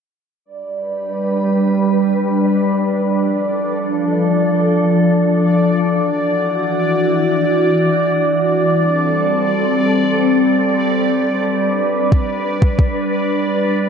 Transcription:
0.45 ambient pad G3 D4 B4, synth texture D5
3.12 ambient pad F3 A4
5.79 ambient pad E3 F#4
8.45 ambient pad G3 C4 A4
11.12 ambient pad D4 B4
12.12 kick
12.62 kick
12.79 kick
13.79 ambient pad F3 A4

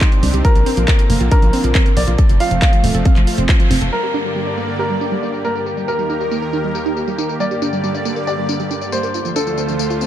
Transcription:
Already playing: supersaw synth C3 C4 D4 D#4 G4, grand piano C5
0.01 synth arpeggio sound D#4, kick, clap, closed hi-hat
0.12 synth arpeggio sound G3, closed hi-hat
0.23 fm bass C2, synth arpeggio sound D4, open hi-hat
0.34 fm bass C2, synth arpeggio sound G4, closed hi-hat
0.45 supersaw synth D3 A#3, synth arpeggio sound F3, grand piano A#4, kick, closed hi-hat
0.55 fm bass A#1, synth arpeggio sound D4, closed hi-hat
0.66 synth arpeggio sound C4, open hi-hat
0.77 fm bass A#1, synth arpeggio sound F3, closed hi-hat
0.88 synth arpeggio sound F3, kick, clap, closed hi-hat
0.99 synth arpeggio sound A#4, closed hi-hat
1.10 fm bass F1, synth arpeggio sound A#3, open hi-hat
1.21 fm bass A#1, synth arpeggio sound F4, closed hi-hat
1.31 synth arpeggio sound D4, grand piano A#4, kick, closed hi-hat
1.42 fm bass A#1, synth arpeggio sound F3, closed hi-hat
1.53 synth arpeggio sound C4, open hi-hat
1.64 fm bass A#1, synth arpeggio sound F3, closed hi-hat
1.75 synth arpeggio sound C4, kick, clap, closed hi-hat
1.86 synth arpeggio sound A#4, closed hi-hat
1.97 fm bass A#1, synth arpeggio sound A#3, grand piano D5, open hi-hat
2.08 fm bass A#1, synth arpeggio sound F4, closed hi-hat
2.18 supersaw synth F3 A3, synth arpeggio sound A4, kick, closed hi-hat
2.29 fm bass F1, synth arpeggio sound F3, closed hi-hat
2.40 synth arpeggio sound F4, grand piano F5, open hi-hat
2.51 fm bass F1, synth arpeggio sound F3, closed hi-hat
2.62 synth arpeggio sound C4, kick, clap, closed hi-hat
2.73 synth arpeggio sound F3, closed hi-hat
2.84 fm bass D#1, synth arpeggio sound A3, open hi-hat
2.95 fm bass F1, synth arpeggio sound A4, closed hi-hat
3.05 synth arpeggio sound C4, kick, closed hi-hat
3.16 fm bass F1, synth arpeggio sound F3, clap, closed hi-hat
3.27 synth arpeggio sound F4, open hi-hat
3.38 fm bass F1, synth arpeggio sound C4, closed hi-hat
3.49 synth arpeggio sound F4, kick, clap, closed hi-hat
3.60 synth arpeggio sound F3, closed hi-hat
3.71 fm bass F1, synth arpeggio sound C4, open hi-hat
3.82 fm bass F1, synth arpeggio sound A4, closed hi-hat
3.92 supersaw synth G2 D3 A#3 G4 D5, synth arpeggio sound G3, grand piano A#4, tambourine
4.03 synth arpeggio sound G4, tambourine
4.14 synth arpeggio sound D4, tambourine
4.25 synth arpeggio sound G3, tambourine
4.36 synth arpeggio sound G3, tambourine
4.47 synth arpeggio sound D5, tambourine
4.58 synth arpeggio sound A#3, tambourine
4.68 synth arpeggio sound A#4, tambourine
4.79 synth arpeggio sound G4, grand piano A#4, tambourine
4.90 synth arpeggio sound G3
5.01 synth arpeggio sound D4, tambourine
5.12 synth arpeggio sound G3, tambourine
5.23 synth arpeggio sound D4, tambourine
5.34 synth arpeggio sound D5, tambourine
5.45 synth arpeggio sound A#3, grand piano A#4, tambourine
5.55 synth arpeggio sound A#4, tambourine
5.66 supersaw synth D#2 D#3 A#3 A#4, synth arpeggio sound A#4, tambourine
5.77 synth arpeggio sound G3, tambourine
5.88 synth arpeggio sound G4, grand piano A#4, tambourine
5.99 synth arpeggio sound G3, tambourine
6.10 synth arpeggio sound D#4, tambourine
6.21 synth arpeggio sound G3, tambourine
6.31 synth arpeggio sound A#3, tambourine
6.42 synth arpeggio sound A#4, tambourine
6.53 synth arpeggio sound D#4, tambourine
6.64 synth arpeggio sound G3
6.75 synth arpeggio sound G4, tambourine
6.86 synth arpeggio sound D#4, tambourine
6.97 synth arpeggio sound G4, tambourine
7.08 synth arpeggio sound G3, tambourine
7.18 synth arpeggio sound D#4, tambourine
7.29 synth arpeggio sound A#4, tambourine
7.40 supersaw synth G2 D3 D5, synth arpeggio sound G3, grand piano D5, tambourine
7.51 synth arpeggio sound G4, tambourine
7.62 synth arpeggio sound D4, tambourine
7.73 synth arpeggio sound G3, tambourine
7.84 synth arpeggio sound G3, tambourine
7.95 synth arpeggio sound D5, tambourine
8.05 synth arpeggio sound A#3, tambourine
8.16 synth arpeggio sound A#4, tambourine
8.27 synth arpeggio sound G4, grand piano D5, tambourine
8.38 synth arpeggio sound G3
8.49 synth arpeggio sound D4, tambourine
8.60 synth arpeggio sound G3, tambourine
8.71 synth arpeggio sound D4, tambourine
8.81 synth arpeggio sound D5, tambourine
8.92 synth arpeggio sound A#3, grand piano C5, tambourine
9.03 synth arpeggio sound A#4, tambourine
9.14 supersaw synth D2 D3 A3 F4 C5, synth arpeggio sound F4, tambourine
9.25 synth arpeggio sound F3, tambourine
9.36 synth arpeggio sound D4, grand piano A4, tambourine
9.47 synth arpeggio sound F3, tambourine
9.58 synth arpeggio sound C4, tambourine
9.68 synth arpeggio sound F3, tambourine
9.79 synth arpeggio sound A3, tambourine
9.90 synth arpeggio sound F4, tambourine
10.01 synth arpeggio sound C4, tambourine

